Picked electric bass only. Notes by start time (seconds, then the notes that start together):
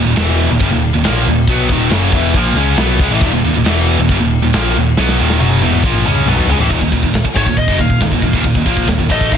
0.06 D#1
0.17 E1
0.51 D#1
0.60 F#1
0.75 D#1
0.95 D#1
1.06 A#1
1.27 D#1
1.47 B1
1.69 D#1
1.90 F#1
2.12 E1
2.34 A#1
2.54 C#2
2.77 B1
3.00 C#2
3.10 A1
3.21 D#1
3.32 D#1
3.43 D#1
3.53 D#1
3.65 E1
3.99 D#1
4.09 F#1
4.20 D#1
4.42 D#1
4.54 A#1
4.76 D#1
4.97 B1
5.20 D#1
5.41 F#1
5.65 E1
5.83 A#1
6.08 C#2
6.28 B1
6.49 C#2
6.60 A1
6.71 D#1
6.81 D#1
6.92 D#1
7.03 D#1
7.24 muted picked electric bass stroke
7.35 G#1
7.46 D#1
7.68 F#1
7.79 D#1
8.01 D#1
8.11 D#1
8.22 D#1
8.33 D#1
8.44 D#1
8.55 D#1
8.66 A#1
8.87 D#1
8.98 D#1
9.10 A1
9.32 G#1